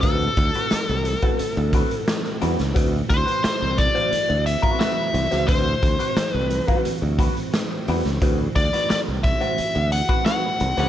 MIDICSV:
0, 0, Header, 1, 8, 480
1, 0, Start_track
1, 0, Tempo, 681818
1, 25, Time_signature, 4, 2, 24, 8
1, 7666, End_track
2, 0, Start_track
2, 0, Title_t, "Lead electric guitar"
2, 0, Program_c, 0, 29
2, 7, Note_on_c, 0, 69, 78
2, 1667, Note_off_c, 0, 69, 0
2, 2179, Note_on_c, 0, 72, 87
2, 2411, Note_off_c, 0, 72, 0
2, 2420, Note_on_c, 0, 72, 91
2, 2661, Note_on_c, 0, 74, 86
2, 2670, Note_off_c, 0, 72, 0
2, 3138, Note_off_c, 0, 74, 0
2, 3141, Note_on_c, 0, 76, 98
2, 3371, Note_off_c, 0, 76, 0
2, 3380, Note_on_c, 0, 76, 92
2, 3856, Note_on_c, 0, 72, 74
2, 3877, Note_off_c, 0, 76, 0
2, 4468, Note_off_c, 0, 72, 0
2, 4468, Note_on_c, 0, 71, 74
2, 4793, Note_off_c, 0, 71, 0
2, 6023, Note_on_c, 0, 74, 90
2, 6255, Note_off_c, 0, 74, 0
2, 6264, Note_on_c, 0, 74, 93
2, 6329, Note_off_c, 0, 74, 0
2, 6501, Note_on_c, 0, 76, 80
2, 6982, Note_off_c, 0, 76, 0
2, 6985, Note_on_c, 0, 78, 97
2, 7210, Note_off_c, 0, 78, 0
2, 7221, Note_on_c, 0, 78, 92
2, 7666, Note_off_c, 0, 78, 0
2, 7666, End_track
3, 0, Start_track
3, 0, Title_t, "Clean electric guitar"
3, 0, Program_c, 1, 27
3, 20, Note_on_c, 1, 60, 75
3, 25, Note_on_c, 1, 66, 73
3, 30, Note_on_c, 1, 71, 84
3, 163, Note_off_c, 1, 60, 0
3, 166, Note_off_c, 1, 66, 0
3, 168, Note_off_c, 1, 71, 0
3, 390, Note_on_c, 1, 71, 57
3, 392, Note_on_c, 1, 66, 58
3, 395, Note_on_c, 1, 60, 47
3, 476, Note_off_c, 1, 71, 0
3, 477, Note_off_c, 1, 66, 0
3, 479, Note_off_c, 1, 60, 0
3, 863, Note_on_c, 1, 71, 76
3, 868, Note_on_c, 1, 66, 78
3, 871, Note_on_c, 1, 60, 71
3, 977, Note_off_c, 1, 71, 0
3, 980, Note_off_c, 1, 66, 0
3, 981, Note_off_c, 1, 60, 0
3, 1227, Note_on_c, 1, 60, 65
3, 1229, Note_on_c, 1, 66, 75
3, 1237, Note_on_c, 1, 71, 77
3, 1339, Note_off_c, 1, 60, 0
3, 1340, Note_off_c, 1, 66, 0
3, 1342, Note_off_c, 1, 71, 0
3, 1700, Note_on_c, 1, 60, 86
3, 1702, Note_on_c, 1, 66, 75
3, 1707, Note_on_c, 1, 71, 82
3, 1808, Note_off_c, 1, 71, 0
3, 1813, Note_off_c, 1, 66, 0
3, 1816, Note_off_c, 1, 60, 0
3, 1931, Note_on_c, 1, 60, 81
3, 1936, Note_on_c, 1, 66, 84
3, 1939, Note_on_c, 1, 71, 94
3, 2051, Note_off_c, 1, 60, 0
3, 2054, Note_off_c, 1, 66, 0
3, 2055, Note_off_c, 1, 71, 0
3, 2293, Note_on_c, 1, 71, 60
3, 2298, Note_on_c, 1, 66, 52
3, 2302, Note_on_c, 1, 60, 49
3, 2388, Note_off_c, 1, 71, 0
3, 2390, Note_off_c, 1, 66, 0
3, 2392, Note_off_c, 1, 60, 0
3, 2779, Note_on_c, 1, 72, 79
3, 2784, Note_on_c, 1, 66, 76
3, 2786, Note_on_c, 1, 60, 63
3, 2891, Note_off_c, 1, 60, 0
3, 2892, Note_off_c, 1, 66, 0
3, 2895, Note_off_c, 1, 72, 0
3, 3255, Note_on_c, 1, 71, 78
3, 3258, Note_on_c, 1, 66, 73
3, 3263, Note_on_c, 1, 60, 66
3, 3365, Note_off_c, 1, 60, 0
3, 3371, Note_off_c, 1, 66, 0
3, 3373, Note_on_c, 1, 60, 73
3, 3374, Note_off_c, 1, 71, 0
3, 3380, Note_on_c, 1, 66, 81
3, 3382, Note_on_c, 1, 71, 80
3, 3493, Note_off_c, 1, 60, 0
3, 3496, Note_off_c, 1, 66, 0
3, 3497, Note_off_c, 1, 71, 0
3, 3739, Note_on_c, 1, 72, 57
3, 3743, Note_on_c, 1, 66, 41
3, 3745, Note_on_c, 1, 60, 39
3, 3831, Note_off_c, 1, 72, 0
3, 3833, Note_off_c, 1, 66, 0
3, 3834, Note_off_c, 1, 60, 0
3, 3857, Note_on_c, 1, 60, 75
3, 3862, Note_on_c, 1, 66, 73
3, 3864, Note_on_c, 1, 71, 85
3, 3975, Note_off_c, 1, 60, 0
3, 3977, Note_off_c, 1, 66, 0
3, 3978, Note_off_c, 1, 71, 0
3, 4219, Note_on_c, 1, 71, 56
3, 4224, Note_on_c, 1, 66, 61
3, 4229, Note_on_c, 1, 60, 47
3, 4311, Note_off_c, 1, 71, 0
3, 4313, Note_off_c, 1, 66, 0
3, 4316, Note_off_c, 1, 60, 0
3, 4699, Note_on_c, 1, 71, 77
3, 4704, Note_on_c, 1, 66, 76
3, 4709, Note_on_c, 1, 60, 68
3, 4843, Note_off_c, 1, 71, 0
3, 4846, Note_off_c, 1, 66, 0
3, 4848, Note_off_c, 1, 60, 0
3, 5058, Note_on_c, 1, 60, 74
3, 5064, Note_on_c, 1, 66, 75
3, 5068, Note_on_c, 1, 71, 86
3, 5170, Note_off_c, 1, 71, 0
3, 5176, Note_off_c, 1, 60, 0
3, 5177, Note_off_c, 1, 66, 0
3, 5551, Note_on_c, 1, 60, 83
3, 5555, Note_on_c, 1, 66, 76
3, 5558, Note_on_c, 1, 71, 92
3, 5659, Note_off_c, 1, 71, 0
3, 5662, Note_off_c, 1, 60, 0
3, 5664, Note_off_c, 1, 66, 0
3, 5786, Note_on_c, 1, 60, 84
3, 5789, Note_on_c, 1, 66, 81
3, 5793, Note_on_c, 1, 71, 89
3, 5900, Note_off_c, 1, 60, 0
3, 5902, Note_off_c, 1, 66, 0
3, 5903, Note_off_c, 1, 71, 0
3, 6147, Note_on_c, 1, 71, 64
3, 6151, Note_on_c, 1, 66, 52
3, 6155, Note_on_c, 1, 60, 56
3, 6236, Note_off_c, 1, 71, 0
3, 6238, Note_off_c, 1, 66, 0
3, 6240, Note_off_c, 1, 60, 0
3, 6623, Note_on_c, 1, 72, 78
3, 6626, Note_on_c, 1, 66, 73
3, 6627, Note_on_c, 1, 60, 59
3, 6736, Note_off_c, 1, 60, 0
3, 6737, Note_off_c, 1, 66, 0
3, 6739, Note_off_c, 1, 72, 0
3, 7102, Note_on_c, 1, 71, 87
3, 7107, Note_on_c, 1, 60, 75
3, 7107, Note_on_c, 1, 66, 76
3, 7209, Note_off_c, 1, 60, 0
3, 7215, Note_off_c, 1, 66, 0
3, 7217, Note_on_c, 1, 60, 75
3, 7219, Note_off_c, 1, 71, 0
3, 7223, Note_on_c, 1, 66, 72
3, 7227, Note_on_c, 1, 71, 75
3, 7336, Note_off_c, 1, 60, 0
3, 7339, Note_off_c, 1, 66, 0
3, 7341, Note_off_c, 1, 71, 0
3, 7584, Note_on_c, 1, 72, 57
3, 7585, Note_on_c, 1, 66, 48
3, 7592, Note_on_c, 1, 60, 48
3, 7666, Note_off_c, 1, 60, 0
3, 7666, Note_off_c, 1, 66, 0
3, 7666, Note_off_c, 1, 72, 0
3, 7666, End_track
4, 0, Start_track
4, 0, Title_t, "String machine"
4, 0, Program_c, 2, 50
4, 0, Note_on_c, 2, 52, 81
4, 0, Note_on_c, 2, 57, 61
4, 0, Note_on_c, 2, 60, 73
4, 0, Note_on_c, 2, 66, 81
4, 7666, Note_off_c, 2, 52, 0
4, 7666, Note_off_c, 2, 57, 0
4, 7666, Note_off_c, 2, 60, 0
4, 7666, Note_off_c, 2, 66, 0
4, 7666, End_track
5, 0, Start_track
5, 0, Title_t, "Fingered electric bass"
5, 0, Program_c, 3, 33
5, 24, Note_on_c, 3, 38, 97
5, 199, Note_off_c, 3, 38, 0
5, 263, Note_on_c, 3, 38, 113
5, 351, Note_off_c, 3, 38, 0
5, 629, Note_on_c, 3, 36, 76
5, 802, Note_off_c, 3, 36, 0
5, 1107, Note_on_c, 3, 38, 91
5, 1281, Note_off_c, 3, 38, 0
5, 1708, Note_on_c, 3, 40, 73
5, 1794, Note_off_c, 3, 40, 0
5, 1829, Note_on_c, 3, 37, 76
5, 1915, Note_off_c, 3, 37, 0
5, 1943, Note_on_c, 3, 38, 91
5, 2118, Note_off_c, 3, 38, 0
5, 2183, Note_on_c, 3, 38, 98
5, 2271, Note_off_c, 3, 38, 0
5, 2550, Note_on_c, 3, 36, 70
5, 2723, Note_off_c, 3, 36, 0
5, 3026, Note_on_c, 3, 38, 75
5, 3200, Note_off_c, 3, 38, 0
5, 3620, Note_on_c, 3, 36, 90
5, 3709, Note_off_c, 3, 36, 0
5, 3750, Note_on_c, 3, 37, 71
5, 3835, Note_off_c, 3, 37, 0
5, 3863, Note_on_c, 3, 38, 105
5, 4038, Note_off_c, 3, 38, 0
5, 4104, Note_on_c, 3, 38, 104
5, 4192, Note_off_c, 3, 38, 0
5, 4466, Note_on_c, 3, 36, 84
5, 4641, Note_off_c, 3, 36, 0
5, 4943, Note_on_c, 3, 38, 80
5, 5119, Note_off_c, 3, 38, 0
5, 5550, Note_on_c, 3, 40, 79
5, 5636, Note_off_c, 3, 40, 0
5, 5665, Note_on_c, 3, 37, 74
5, 5753, Note_off_c, 3, 37, 0
5, 5787, Note_on_c, 3, 38, 89
5, 5962, Note_off_c, 3, 38, 0
5, 6026, Note_on_c, 3, 38, 107
5, 6114, Note_off_c, 3, 38, 0
5, 6394, Note_on_c, 3, 36, 70
5, 6566, Note_off_c, 3, 36, 0
5, 6870, Note_on_c, 3, 38, 81
5, 7044, Note_off_c, 3, 38, 0
5, 7469, Note_on_c, 3, 36, 85
5, 7556, Note_off_c, 3, 36, 0
5, 7587, Note_on_c, 3, 37, 81
5, 7666, Note_off_c, 3, 37, 0
5, 7666, End_track
6, 0, Start_track
6, 0, Title_t, "Muted clean electric guitar strokes"
6, 262, Note_on_c, 9, 29, 35
6, 332, Note_off_c, 9, 29, 0
6, 505, Note_on_c, 9, 29, 41
6, 575, Note_off_c, 9, 29, 0
6, 629, Note_on_c, 9, 29, 41
6, 699, Note_off_c, 9, 29, 0
6, 1109, Note_on_c, 9, 29, 38
6, 1180, Note_off_c, 9, 29, 0
6, 1351, Note_on_c, 9, 29, 45
6, 1421, Note_off_c, 9, 29, 0
6, 1469, Note_on_c, 9, 29, 38
6, 1540, Note_off_c, 9, 29, 0
6, 1581, Note_on_c, 9, 29, 39
6, 1651, Note_off_c, 9, 29, 0
6, 1817, Note_on_c, 9, 29, 43
6, 1887, Note_off_c, 9, 29, 0
6, 2174, Note_on_c, 9, 29, 42
6, 2244, Note_off_c, 9, 29, 0
6, 2415, Note_on_c, 9, 29, 49
6, 2485, Note_off_c, 9, 29, 0
6, 2542, Note_on_c, 9, 29, 42
6, 2612, Note_off_c, 9, 29, 0
6, 2900, Note_on_c, 9, 29, 42
6, 2970, Note_off_c, 9, 29, 0
6, 3018, Note_on_c, 9, 29, 50
6, 3088, Note_off_c, 9, 29, 0
6, 3619, Note_on_c, 9, 29, 39
6, 3690, Note_off_c, 9, 29, 0
6, 4097, Note_on_c, 9, 29, 42
6, 4168, Note_off_c, 9, 29, 0
6, 4343, Note_on_c, 9, 29, 42
6, 4413, Note_off_c, 9, 29, 0
6, 4466, Note_on_c, 9, 29, 37
6, 4537, Note_off_c, 9, 29, 0
6, 4942, Note_on_c, 9, 29, 43
6, 5013, Note_off_c, 9, 29, 0
6, 5179, Note_on_c, 9, 29, 37
6, 5249, Note_off_c, 9, 29, 0
6, 5299, Note_on_c, 9, 29, 35
6, 5370, Note_off_c, 9, 29, 0
6, 5426, Note_on_c, 9, 29, 48
6, 5497, Note_off_c, 9, 29, 0
6, 5667, Note_on_c, 9, 29, 38
6, 5738, Note_off_c, 9, 29, 0
6, 6021, Note_on_c, 9, 29, 33
6, 6092, Note_off_c, 9, 29, 0
6, 6263, Note_on_c, 9, 29, 45
6, 6333, Note_off_c, 9, 29, 0
6, 6387, Note_on_c, 9, 29, 55
6, 6457, Note_off_c, 9, 29, 0
6, 6744, Note_on_c, 9, 29, 39
6, 6814, Note_off_c, 9, 29, 0
6, 6863, Note_on_c, 9, 29, 47
6, 6934, Note_off_c, 9, 29, 0
6, 7461, Note_on_c, 9, 29, 45
6, 7531, Note_off_c, 9, 29, 0
6, 7666, End_track
7, 0, Start_track
7, 0, Title_t, "Muted fingered electric bass strokes"
7, 509, Note_on_c, 9, 29, 52
7, 579, Note_off_c, 9, 29, 0
7, 989, Note_on_c, 9, 29, 44
7, 1059, Note_off_c, 9, 29, 0
7, 2426, Note_on_c, 9, 29, 49
7, 2496, Note_off_c, 9, 29, 0
7, 2903, Note_on_c, 9, 29, 39
7, 2973, Note_off_c, 9, 29, 0
7, 4340, Note_on_c, 9, 29, 51
7, 4411, Note_off_c, 9, 29, 0
7, 4826, Note_on_c, 9, 29, 46
7, 4897, Note_off_c, 9, 29, 0
7, 6275, Note_on_c, 9, 29, 49
7, 6346, Note_off_c, 9, 29, 0
7, 6753, Note_on_c, 9, 29, 43
7, 6823, Note_off_c, 9, 29, 0
7, 7666, End_track
8, 0, Start_track
8, 0, Title_t, "Drums"
8, 20, Note_on_c, 9, 42, 98
8, 22, Note_on_c, 9, 36, 106
8, 91, Note_off_c, 9, 42, 0
8, 93, Note_off_c, 9, 36, 0
8, 143, Note_on_c, 9, 42, 33
8, 213, Note_off_c, 9, 42, 0
8, 258, Note_on_c, 9, 42, 70
8, 262, Note_on_c, 9, 36, 89
8, 329, Note_off_c, 9, 42, 0
8, 332, Note_off_c, 9, 36, 0
8, 380, Note_on_c, 9, 42, 59
8, 451, Note_off_c, 9, 42, 0
8, 499, Note_on_c, 9, 38, 101
8, 502, Note_on_c, 9, 42, 102
8, 570, Note_off_c, 9, 38, 0
8, 572, Note_off_c, 9, 42, 0
8, 620, Note_on_c, 9, 42, 34
8, 690, Note_off_c, 9, 42, 0
8, 739, Note_on_c, 9, 42, 67
8, 809, Note_off_c, 9, 42, 0
8, 859, Note_on_c, 9, 42, 45
8, 864, Note_on_c, 9, 36, 81
8, 930, Note_off_c, 9, 42, 0
8, 934, Note_off_c, 9, 36, 0
8, 979, Note_on_c, 9, 42, 72
8, 1049, Note_off_c, 9, 42, 0
8, 1217, Note_on_c, 9, 36, 89
8, 1220, Note_on_c, 9, 42, 85
8, 1288, Note_off_c, 9, 36, 0
8, 1290, Note_off_c, 9, 42, 0
8, 1344, Note_on_c, 9, 42, 47
8, 1414, Note_off_c, 9, 42, 0
8, 1462, Note_on_c, 9, 38, 107
8, 1462, Note_on_c, 9, 42, 75
8, 1532, Note_off_c, 9, 38, 0
8, 1532, Note_off_c, 9, 42, 0
8, 1587, Note_on_c, 9, 42, 36
8, 1658, Note_off_c, 9, 42, 0
8, 1701, Note_on_c, 9, 42, 72
8, 1772, Note_off_c, 9, 42, 0
8, 1824, Note_on_c, 9, 42, 43
8, 1826, Note_on_c, 9, 38, 39
8, 1894, Note_off_c, 9, 42, 0
8, 1896, Note_off_c, 9, 38, 0
8, 1942, Note_on_c, 9, 42, 102
8, 1943, Note_on_c, 9, 36, 109
8, 2013, Note_off_c, 9, 42, 0
8, 2014, Note_off_c, 9, 36, 0
8, 2183, Note_on_c, 9, 42, 75
8, 2184, Note_on_c, 9, 36, 87
8, 2254, Note_off_c, 9, 36, 0
8, 2254, Note_off_c, 9, 42, 0
8, 2306, Note_on_c, 9, 42, 56
8, 2377, Note_off_c, 9, 42, 0
8, 2423, Note_on_c, 9, 38, 107
8, 2425, Note_on_c, 9, 42, 92
8, 2493, Note_off_c, 9, 38, 0
8, 2496, Note_off_c, 9, 42, 0
8, 2662, Note_on_c, 9, 42, 66
8, 2664, Note_on_c, 9, 38, 29
8, 2665, Note_on_c, 9, 36, 93
8, 2733, Note_off_c, 9, 42, 0
8, 2735, Note_off_c, 9, 36, 0
8, 2735, Note_off_c, 9, 38, 0
8, 2784, Note_on_c, 9, 42, 51
8, 2855, Note_off_c, 9, 42, 0
8, 2903, Note_on_c, 9, 42, 80
8, 2974, Note_off_c, 9, 42, 0
8, 3024, Note_on_c, 9, 42, 32
8, 3094, Note_off_c, 9, 42, 0
8, 3143, Note_on_c, 9, 42, 87
8, 3214, Note_off_c, 9, 42, 0
8, 3262, Note_on_c, 9, 36, 83
8, 3265, Note_on_c, 9, 42, 45
8, 3332, Note_off_c, 9, 36, 0
8, 3335, Note_off_c, 9, 42, 0
8, 3385, Note_on_c, 9, 38, 104
8, 3385, Note_on_c, 9, 42, 78
8, 3455, Note_off_c, 9, 38, 0
8, 3455, Note_off_c, 9, 42, 0
8, 3623, Note_on_c, 9, 42, 62
8, 3694, Note_off_c, 9, 42, 0
8, 3743, Note_on_c, 9, 42, 53
8, 3745, Note_on_c, 9, 38, 40
8, 3813, Note_off_c, 9, 42, 0
8, 3815, Note_off_c, 9, 38, 0
8, 3860, Note_on_c, 9, 42, 91
8, 3863, Note_on_c, 9, 36, 125
8, 3930, Note_off_c, 9, 42, 0
8, 3933, Note_off_c, 9, 36, 0
8, 4102, Note_on_c, 9, 42, 70
8, 4103, Note_on_c, 9, 36, 97
8, 4172, Note_off_c, 9, 42, 0
8, 4173, Note_off_c, 9, 36, 0
8, 4222, Note_on_c, 9, 42, 57
8, 4292, Note_off_c, 9, 42, 0
8, 4341, Note_on_c, 9, 38, 106
8, 4344, Note_on_c, 9, 42, 96
8, 4411, Note_off_c, 9, 38, 0
8, 4414, Note_off_c, 9, 42, 0
8, 4579, Note_on_c, 9, 42, 66
8, 4649, Note_off_c, 9, 42, 0
8, 4702, Note_on_c, 9, 42, 46
8, 4705, Note_on_c, 9, 36, 78
8, 4772, Note_off_c, 9, 42, 0
8, 4775, Note_off_c, 9, 36, 0
8, 4823, Note_on_c, 9, 42, 79
8, 4893, Note_off_c, 9, 42, 0
8, 5060, Note_on_c, 9, 36, 94
8, 5064, Note_on_c, 9, 42, 83
8, 5130, Note_off_c, 9, 36, 0
8, 5134, Note_off_c, 9, 42, 0
8, 5186, Note_on_c, 9, 42, 50
8, 5257, Note_off_c, 9, 42, 0
8, 5305, Note_on_c, 9, 38, 103
8, 5305, Note_on_c, 9, 42, 81
8, 5376, Note_off_c, 9, 38, 0
8, 5376, Note_off_c, 9, 42, 0
8, 5545, Note_on_c, 9, 46, 60
8, 5616, Note_off_c, 9, 46, 0
8, 5668, Note_on_c, 9, 42, 48
8, 5670, Note_on_c, 9, 38, 37
8, 5739, Note_off_c, 9, 42, 0
8, 5741, Note_off_c, 9, 38, 0
8, 5785, Note_on_c, 9, 36, 110
8, 5788, Note_on_c, 9, 42, 94
8, 5855, Note_off_c, 9, 36, 0
8, 5858, Note_off_c, 9, 42, 0
8, 6025, Note_on_c, 9, 36, 81
8, 6026, Note_on_c, 9, 42, 73
8, 6096, Note_off_c, 9, 36, 0
8, 6097, Note_off_c, 9, 42, 0
8, 6148, Note_on_c, 9, 42, 62
8, 6149, Note_on_c, 9, 38, 34
8, 6219, Note_off_c, 9, 42, 0
8, 6220, Note_off_c, 9, 38, 0
8, 6267, Note_on_c, 9, 38, 102
8, 6269, Note_on_c, 9, 42, 90
8, 6337, Note_off_c, 9, 38, 0
8, 6340, Note_off_c, 9, 42, 0
8, 6505, Note_on_c, 9, 42, 61
8, 6506, Note_on_c, 9, 36, 100
8, 6507, Note_on_c, 9, 38, 31
8, 6575, Note_off_c, 9, 42, 0
8, 6577, Note_off_c, 9, 36, 0
8, 6578, Note_off_c, 9, 38, 0
8, 6626, Note_on_c, 9, 42, 52
8, 6696, Note_off_c, 9, 42, 0
8, 6744, Note_on_c, 9, 42, 73
8, 6815, Note_off_c, 9, 42, 0
8, 6864, Note_on_c, 9, 42, 31
8, 6935, Note_off_c, 9, 42, 0
8, 6983, Note_on_c, 9, 42, 88
8, 7054, Note_off_c, 9, 42, 0
8, 7104, Note_on_c, 9, 36, 86
8, 7104, Note_on_c, 9, 42, 50
8, 7174, Note_off_c, 9, 36, 0
8, 7175, Note_off_c, 9, 42, 0
8, 7223, Note_on_c, 9, 38, 101
8, 7223, Note_on_c, 9, 42, 74
8, 7293, Note_off_c, 9, 38, 0
8, 7293, Note_off_c, 9, 42, 0
8, 7461, Note_on_c, 9, 42, 65
8, 7531, Note_off_c, 9, 42, 0
8, 7583, Note_on_c, 9, 42, 47
8, 7585, Note_on_c, 9, 38, 39
8, 7654, Note_off_c, 9, 42, 0
8, 7656, Note_off_c, 9, 38, 0
8, 7666, End_track
0, 0, End_of_file